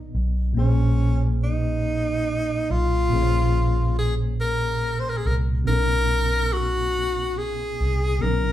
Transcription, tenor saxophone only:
0, 0, Header, 1, 2, 480
1, 0, Start_track
1, 0, Tempo, 851064
1, 312, Time_signature, 6, 3, 24, 8
1, 4808, End_track
2, 0, Start_track
2, 0, Title_t, "Tenor saxophone"
2, 0, Program_c, 0, 66
2, 0, Note_on_c, 0, 63, 90
2, 74, Note_off_c, 0, 63, 0
2, 328, Note_on_c, 0, 61, 83
2, 778, Note_off_c, 0, 61, 0
2, 810, Note_on_c, 0, 63, 92
2, 1526, Note_on_c, 0, 65, 103
2, 1535, Note_off_c, 0, 63, 0
2, 2239, Note_off_c, 0, 65, 0
2, 2248, Note_on_c, 0, 68, 90
2, 2338, Note_off_c, 0, 68, 0
2, 2484, Note_on_c, 0, 70, 99
2, 2816, Note_on_c, 0, 72, 86
2, 2825, Note_off_c, 0, 70, 0
2, 2871, Note_on_c, 0, 70, 87
2, 2879, Note_off_c, 0, 72, 0
2, 2917, Note_on_c, 0, 68, 88
2, 2926, Note_off_c, 0, 70, 0
2, 2971, Note_on_c, 0, 70, 88
2, 2980, Note_off_c, 0, 68, 0
2, 3017, Note_off_c, 0, 70, 0
2, 3200, Note_on_c, 0, 70, 112
2, 3682, Note_on_c, 0, 66, 111
2, 3690, Note_off_c, 0, 70, 0
2, 4160, Note_on_c, 0, 68, 95
2, 4169, Note_off_c, 0, 66, 0
2, 4636, Note_on_c, 0, 70, 96
2, 4644, Note_off_c, 0, 68, 0
2, 4808, Note_off_c, 0, 70, 0
2, 4808, End_track
0, 0, End_of_file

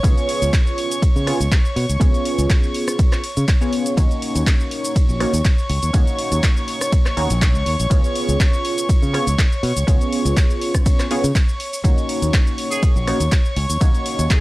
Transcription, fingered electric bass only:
0, 0, Header, 1, 3, 480
1, 0, Start_track
1, 0, Tempo, 491803
1, 40, Time_signature, 4, 2, 24, 8
1, 14058, End_track
2, 0, Start_track
2, 0, Title_t, "Fingered electric bass"
2, 0, Program_c, 0, 33
2, 38, Note_on_c, 0, 37, 100
2, 118, Note_off_c, 0, 37, 0
2, 408, Note_on_c, 0, 37, 86
2, 477, Note_off_c, 0, 37, 0
2, 1130, Note_on_c, 0, 49, 83
2, 1270, Note_off_c, 0, 49, 0
2, 1369, Note_on_c, 0, 37, 79
2, 1437, Note_off_c, 0, 37, 0
2, 1719, Note_on_c, 0, 47, 108
2, 1799, Note_off_c, 0, 47, 0
2, 1848, Note_on_c, 0, 37, 82
2, 1916, Note_off_c, 0, 37, 0
2, 1960, Note_on_c, 0, 37, 93
2, 2039, Note_off_c, 0, 37, 0
2, 2326, Note_on_c, 0, 37, 87
2, 2396, Note_off_c, 0, 37, 0
2, 3289, Note_on_c, 0, 49, 77
2, 3357, Note_off_c, 0, 49, 0
2, 3879, Note_on_c, 0, 39, 95
2, 3959, Note_off_c, 0, 39, 0
2, 4249, Note_on_c, 0, 39, 87
2, 4317, Note_off_c, 0, 39, 0
2, 4967, Note_on_c, 0, 34, 84
2, 5108, Note_off_c, 0, 34, 0
2, 5205, Note_on_c, 0, 39, 80
2, 5275, Note_off_c, 0, 39, 0
2, 5559, Note_on_c, 0, 37, 102
2, 5638, Note_off_c, 0, 37, 0
2, 5688, Note_on_c, 0, 39, 80
2, 5757, Note_off_c, 0, 39, 0
2, 6165, Note_on_c, 0, 39, 89
2, 6235, Note_off_c, 0, 39, 0
2, 6999, Note_on_c, 0, 39, 90
2, 7079, Note_off_c, 0, 39, 0
2, 7128, Note_on_c, 0, 34, 97
2, 7365, Note_off_c, 0, 34, 0
2, 7365, Note_on_c, 0, 37, 94
2, 7435, Note_off_c, 0, 37, 0
2, 7477, Note_on_c, 0, 39, 95
2, 7557, Note_off_c, 0, 39, 0
2, 7609, Note_on_c, 0, 34, 84
2, 7677, Note_off_c, 0, 34, 0
2, 7717, Note_on_c, 0, 37, 100
2, 7798, Note_off_c, 0, 37, 0
2, 8086, Note_on_c, 0, 37, 87
2, 8156, Note_off_c, 0, 37, 0
2, 8808, Note_on_c, 0, 49, 83
2, 8949, Note_off_c, 0, 49, 0
2, 9047, Note_on_c, 0, 37, 80
2, 9116, Note_off_c, 0, 37, 0
2, 9399, Note_on_c, 0, 47, 101
2, 9479, Note_off_c, 0, 47, 0
2, 9529, Note_on_c, 0, 37, 80
2, 9597, Note_off_c, 0, 37, 0
2, 9640, Note_on_c, 0, 37, 98
2, 9719, Note_off_c, 0, 37, 0
2, 10006, Note_on_c, 0, 37, 85
2, 10076, Note_off_c, 0, 37, 0
2, 10968, Note_on_c, 0, 49, 77
2, 11037, Note_off_c, 0, 49, 0
2, 11559, Note_on_c, 0, 39, 97
2, 11638, Note_off_c, 0, 39, 0
2, 11927, Note_on_c, 0, 39, 83
2, 11996, Note_off_c, 0, 39, 0
2, 12647, Note_on_c, 0, 34, 83
2, 12788, Note_off_c, 0, 34, 0
2, 12885, Note_on_c, 0, 39, 80
2, 12955, Note_off_c, 0, 39, 0
2, 13239, Note_on_c, 0, 37, 105
2, 13319, Note_off_c, 0, 37, 0
2, 13367, Note_on_c, 0, 39, 81
2, 13436, Note_off_c, 0, 39, 0
2, 13479, Note_on_c, 0, 39, 99
2, 13559, Note_off_c, 0, 39, 0
2, 13848, Note_on_c, 0, 39, 89
2, 13917, Note_off_c, 0, 39, 0
2, 14058, End_track
3, 0, Start_track
3, 0, Title_t, "Muted fingered electric bass strokes"
3, 999, Note_on_c, 9, 29, 42
3, 1096, Note_off_c, 9, 29, 0
3, 4838, Note_on_c, 9, 29, 41
3, 4936, Note_off_c, 9, 29, 0
3, 8679, Note_on_c, 9, 29, 42
3, 8777, Note_off_c, 9, 29, 0
3, 12519, Note_on_c, 9, 29, 42
3, 12617, Note_off_c, 9, 29, 0
3, 14058, End_track
0, 0, End_of_file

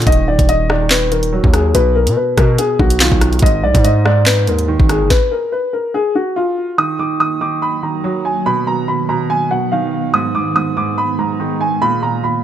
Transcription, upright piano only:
0, 0, Header, 1, 2, 480
1, 0, Start_track
1, 0, Key_signature, -6, "minor"
1, 0, Tempo, 419580
1, 78, Time_signature, 4, 2, 24, 8
1, 14229, End_track
2, 0, Start_track
2, 0, Title_t, "Upright piano"
2, 0, Program_c, 0, 0
2, 79, Note_on_c, 0, 75, 101
2, 305, Note_off_c, 0, 75, 0
2, 319, Note_on_c, 0, 74, 78
2, 545, Note_off_c, 0, 74, 0
2, 559, Note_on_c, 0, 75, 95
2, 785, Note_off_c, 0, 75, 0
2, 799, Note_on_c, 0, 74, 77
2, 1024, Note_off_c, 0, 74, 0
2, 1038, Note_on_c, 0, 71, 86
2, 1264, Note_off_c, 0, 71, 0
2, 1275, Note_on_c, 0, 70, 71
2, 1728, Note_off_c, 0, 70, 0
2, 1757, Note_on_c, 0, 68, 76
2, 1983, Note_off_c, 0, 68, 0
2, 1996, Note_on_c, 0, 71, 97
2, 2223, Note_off_c, 0, 71, 0
2, 2235, Note_on_c, 0, 70, 84
2, 2462, Note_off_c, 0, 70, 0
2, 2477, Note_on_c, 0, 71, 78
2, 2703, Note_off_c, 0, 71, 0
2, 2717, Note_on_c, 0, 70, 77
2, 2944, Note_off_c, 0, 70, 0
2, 2959, Note_on_c, 0, 68, 90
2, 3184, Note_off_c, 0, 68, 0
2, 3198, Note_on_c, 0, 66, 81
2, 3424, Note_off_c, 0, 66, 0
2, 3439, Note_on_c, 0, 65, 77
2, 3890, Note_off_c, 0, 65, 0
2, 3918, Note_on_c, 0, 75, 97
2, 4144, Note_off_c, 0, 75, 0
2, 4158, Note_on_c, 0, 74, 85
2, 4384, Note_off_c, 0, 74, 0
2, 4397, Note_on_c, 0, 75, 88
2, 4623, Note_off_c, 0, 75, 0
2, 4637, Note_on_c, 0, 74, 79
2, 4863, Note_off_c, 0, 74, 0
2, 4878, Note_on_c, 0, 71, 89
2, 5104, Note_off_c, 0, 71, 0
2, 5118, Note_on_c, 0, 70, 68
2, 5569, Note_off_c, 0, 70, 0
2, 5599, Note_on_c, 0, 68, 81
2, 5824, Note_off_c, 0, 68, 0
2, 5838, Note_on_c, 0, 71, 102
2, 6064, Note_off_c, 0, 71, 0
2, 6078, Note_on_c, 0, 70, 78
2, 6304, Note_off_c, 0, 70, 0
2, 6317, Note_on_c, 0, 71, 79
2, 6543, Note_off_c, 0, 71, 0
2, 6557, Note_on_c, 0, 70, 75
2, 6783, Note_off_c, 0, 70, 0
2, 6799, Note_on_c, 0, 68, 90
2, 7024, Note_off_c, 0, 68, 0
2, 7039, Note_on_c, 0, 66, 75
2, 7264, Note_off_c, 0, 66, 0
2, 7278, Note_on_c, 0, 65, 87
2, 7729, Note_off_c, 0, 65, 0
2, 7761, Note_on_c, 0, 87, 98
2, 7985, Note_off_c, 0, 87, 0
2, 8001, Note_on_c, 0, 86, 81
2, 8225, Note_off_c, 0, 86, 0
2, 8240, Note_on_c, 0, 87, 97
2, 8465, Note_off_c, 0, 87, 0
2, 8479, Note_on_c, 0, 86, 80
2, 8704, Note_off_c, 0, 86, 0
2, 8719, Note_on_c, 0, 83, 88
2, 8945, Note_off_c, 0, 83, 0
2, 8959, Note_on_c, 0, 82, 70
2, 9410, Note_off_c, 0, 82, 0
2, 9438, Note_on_c, 0, 80, 78
2, 9664, Note_off_c, 0, 80, 0
2, 9678, Note_on_c, 0, 83, 100
2, 9904, Note_off_c, 0, 83, 0
2, 9920, Note_on_c, 0, 82, 85
2, 10145, Note_off_c, 0, 82, 0
2, 10159, Note_on_c, 0, 83, 78
2, 10385, Note_off_c, 0, 83, 0
2, 10397, Note_on_c, 0, 82, 80
2, 10623, Note_off_c, 0, 82, 0
2, 10637, Note_on_c, 0, 80, 92
2, 10863, Note_off_c, 0, 80, 0
2, 10877, Note_on_c, 0, 78, 83
2, 11103, Note_off_c, 0, 78, 0
2, 11116, Note_on_c, 0, 77, 82
2, 11568, Note_off_c, 0, 77, 0
2, 11597, Note_on_c, 0, 87, 95
2, 11823, Note_off_c, 0, 87, 0
2, 11838, Note_on_c, 0, 86, 84
2, 12064, Note_off_c, 0, 86, 0
2, 12077, Note_on_c, 0, 87, 87
2, 12303, Note_off_c, 0, 87, 0
2, 12319, Note_on_c, 0, 86, 83
2, 12544, Note_off_c, 0, 86, 0
2, 12559, Note_on_c, 0, 83, 91
2, 12784, Note_off_c, 0, 83, 0
2, 12799, Note_on_c, 0, 82, 72
2, 13250, Note_off_c, 0, 82, 0
2, 13277, Note_on_c, 0, 80, 85
2, 13503, Note_off_c, 0, 80, 0
2, 13518, Note_on_c, 0, 83, 103
2, 13744, Note_off_c, 0, 83, 0
2, 13758, Note_on_c, 0, 82, 82
2, 13984, Note_off_c, 0, 82, 0
2, 13998, Note_on_c, 0, 83, 77
2, 14224, Note_off_c, 0, 83, 0
2, 14229, End_track
0, 0, End_of_file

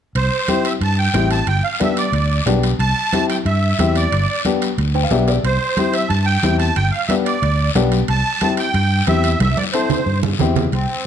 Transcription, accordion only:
0, 0, Header, 1, 2, 480
1, 0, Start_track
1, 0, Key_signature, 0, "major"
1, 0, Tempo, 330579
1, 221, Time_signature, 4, 2, 24, 8
1, 16065, End_track
2, 0, Start_track
2, 0, Title_t, "Accordion"
2, 0, Program_c, 0, 21
2, 243, Note_on_c, 0, 72, 87
2, 951, Note_on_c, 0, 76, 82
2, 975, Note_off_c, 0, 72, 0
2, 1057, Note_off_c, 0, 76, 0
2, 1208, Note_on_c, 0, 81, 90
2, 1420, Note_off_c, 0, 81, 0
2, 1426, Note_on_c, 0, 79, 92
2, 1871, Note_off_c, 0, 79, 0
2, 1911, Note_on_c, 0, 81, 90
2, 2131, Note_off_c, 0, 81, 0
2, 2151, Note_on_c, 0, 79, 93
2, 2371, Note_off_c, 0, 79, 0
2, 2379, Note_on_c, 0, 77, 83
2, 2604, Note_off_c, 0, 77, 0
2, 2629, Note_on_c, 0, 76, 78
2, 2871, Note_on_c, 0, 74, 70
2, 2874, Note_off_c, 0, 76, 0
2, 3537, Note_off_c, 0, 74, 0
2, 4056, Note_on_c, 0, 81, 105
2, 4729, Note_off_c, 0, 81, 0
2, 4784, Note_on_c, 0, 79, 84
2, 4892, Note_off_c, 0, 79, 0
2, 5025, Note_on_c, 0, 76, 78
2, 5754, Note_on_c, 0, 74, 81
2, 5765, Note_off_c, 0, 76, 0
2, 6418, Note_off_c, 0, 74, 0
2, 7912, Note_on_c, 0, 72, 91
2, 8613, Note_on_c, 0, 76, 86
2, 8647, Note_off_c, 0, 72, 0
2, 8840, Note_off_c, 0, 76, 0
2, 8843, Note_on_c, 0, 81, 93
2, 9074, Note_off_c, 0, 81, 0
2, 9081, Note_on_c, 0, 79, 91
2, 9536, Note_off_c, 0, 79, 0
2, 9564, Note_on_c, 0, 81, 93
2, 9813, Note_on_c, 0, 79, 99
2, 9819, Note_off_c, 0, 81, 0
2, 10036, Note_on_c, 0, 77, 78
2, 10039, Note_off_c, 0, 79, 0
2, 10268, Note_on_c, 0, 76, 87
2, 10270, Note_off_c, 0, 77, 0
2, 10383, Note_off_c, 0, 76, 0
2, 10524, Note_on_c, 0, 74, 80
2, 11200, Note_off_c, 0, 74, 0
2, 11751, Note_on_c, 0, 81, 108
2, 12414, Note_off_c, 0, 81, 0
2, 12476, Note_on_c, 0, 79, 100
2, 13137, Note_off_c, 0, 79, 0
2, 13190, Note_on_c, 0, 76, 96
2, 13642, Note_off_c, 0, 76, 0
2, 13664, Note_on_c, 0, 76, 92
2, 13896, Note_on_c, 0, 74, 78
2, 13908, Note_off_c, 0, 76, 0
2, 14005, Note_off_c, 0, 74, 0
2, 14120, Note_on_c, 0, 72, 73
2, 14797, Note_off_c, 0, 72, 0
2, 15586, Note_on_c, 0, 60, 86
2, 16065, Note_off_c, 0, 60, 0
2, 16065, End_track
0, 0, End_of_file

